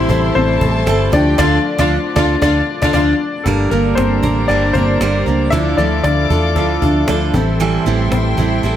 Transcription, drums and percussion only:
0.10 cajon bass
0.36 cajon slap
0.61 cajon bass
0.87 cajon slap
1.13 cajon bass
1.39 cajon bass, cajon slap
1.79 cajon bass, cajon slap
2.16 cajon bass, cajon slap
2.42 cajon bass, cajon slap
2.82 cajon bass, cajon slap
2.94 cajon bass, cajon slap
3.46 cajon bass
3.98 cajon slap
4.23 cajon bass
4.49 cajon slap
4.75 cajon bass
5.01 cajon slap
5.53 cajon bass
6.04 cajon slap
6.30 cajon bass
6.56 cajon bass, cajon slap
6.82 cajon bass
7.08 cajon slap
7.34 cajon bass
7.86 cajon slap
8.12 cajon slap
8.38 cajon bass
8.64 cajon slap

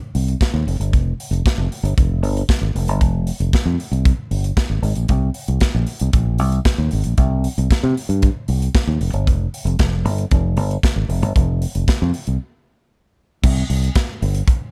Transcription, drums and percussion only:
0.15 open hi-hat
0.28 closed hi-hat
0.41 kick, snare, closed hi-hat
0.68 open hi-hat
0.81 closed hi-hat
0.93 kick, closed hi-hat
1.20 open hi-hat
1.33 closed hi-hat
1.46 kick, snare, closed hi-hat
1.72 open hi-hat
1.85 closed hi-hat
1.98 kick, closed hi-hat
2.24 open hi-hat
2.37 closed hi-hat
2.49 kick, snare, closed hi-hat
2.76 open hi-hat
2.88 closed hi-hat
3.01 kick, closed hi-hat
3.27 open hi-hat
3.40 closed hi-hat
3.53 kick, snare, closed hi-hat
3.80 open hi-hat
3.93 closed hi-hat
4.05 kick, closed hi-hat
4.31 open hi-hat
4.44 closed hi-hat
4.57 kick, snare, closed hi-hat
4.83 open hi-hat
4.95 closed hi-hat
5.08 kick, closed hi-hat
5.34 open hi-hat
5.48 closed hi-hat
5.61 kick, snare, closed hi-hat
5.87 open hi-hat
5.99 closed hi-hat
6.13 kick, closed hi-hat
6.38 open hi-hat
6.52 closed hi-hat
6.65 kick, snare, closed hi-hat
6.91 open hi-hat
7.04 closed hi-hat
7.18 kick, closed hi-hat
7.44 open hi-hat
7.58 closed hi-hat
7.71 kick, snare, closed hi-hat
7.97 open hi-hat
8.09 closed hi-hat
8.22 kick, closed hi-hat
8.48 open hi-hat
8.62 closed hi-hat
8.75 kick, snare, closed hi-hat
9.01 open hi-hat
9.13 closed hi-hat
9.27 kick, closed hi-hat
9.54 open hi-hat
9.67 closed hi-hat
9.79 kick, snare, closed hi-hat
10.06 open hi-hat
10.18 closed hi-hat
10.31 kick, closed hi-hat
10.57 open hi-hat
10.71 closed hi-hat
10.83 kick, snare, closed hi-hat
11.10 open hi-hat
11.23 closed hi-hat
11.36 kick, closed hi-hat
11.62 open hi-hat
11.75 closed hi-hat
11.88 kick, snare, closed hi-hat
12.14 open hi-hat
12.27 closed hi-hat
13.44 kick, crash
13.70 open hi-hat
13.84 closed hi-hat
13.95 kick, snare, closed hi-hat
14.22 open hi-hat
14.35 closed hi-hat
14.48 kick, closed hi-hat

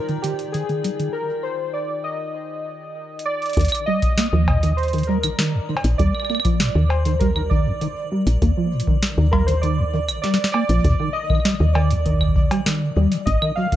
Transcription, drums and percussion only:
0.09 closed hi-hat
0.24 closed hi-hat
0.39 closed hi-hat
0.54 closed hi-hat
0.69 closed hi-hat
0.84 closed hi-hat
1.00 closed hi-hat
3.19 closed hi-hat
3.42 closed hi-hat
3.46 closed hi-hat
3.50 closed hi-hat
3.53 closed hi-hat
3.57 kick, closed hi-hat
3.60 closed hi-hat
3.65 closed hi-hat
3.68 closed hi-hat, claves
3.75 closed hi-hat
4.02 kick, closed hi-hat
4.18 snare, closed hi-hat
4.48 kick, cowbell
4.63 closed hi-hat
4.78 closed hi-hat
4.83 closed hi-hat
4.88 closed hi-hat
4.93 closed hi-hat
4.98 closed hi-hat
5.03 closed hi-hat
5.24 closed hi-hat, cabasa, claves
5.39 snare, closed hi-hat
5.77 cowbell
5.84 closed hi-hat
5.99 kick, closed hi-hat
6.15 claves
6.20 claves
6.25 claves
6.30 claves
6.35 claves
6.40 claves
6.45 kick, closed hi-hat, claves
6.60 snare, closed hi-hat
6.90 cowbell
7.05 closed hi-hat
7.21 kick, closed hi-hat
7.36 claves
7.51 kick
7.81 closed hi-hat
8.27 closed hi-hat
8.42 kick, closed hi-hat
8.80 closed hi-hat
8.87 kick
9.03 snare, closed hi-hat
9.33 kick, cowbell
9.48 closed hi-hat
9.63 closed hi-hat
10.09 closed hi-hat, cabasa, claves
10.24 snare, closed hi-hat
10.34 snare
10.44 snare
10.54 cowbell
10.69 closed hi-hat
10.84 kick, closed hi-hat
11.30 kick, claves
11.35 claves
11.40 claves
11.45 snare, closed hi-hat, claves
11.50 claves
11.55 claves
11.75 cowbell
11.91 closed hi-hat
12.06 kick, closed hi-hat
12.13 kick
12.21 kick, claves
12.28 kick
12.36 kick
12.51 closed hi-hat, cowbell
12.66 snare, closed hi-hat
13.12 closed hi-hat
13.27 kick, closed hi-hat
13.42 claves
13.72 kick, closed hi-hat

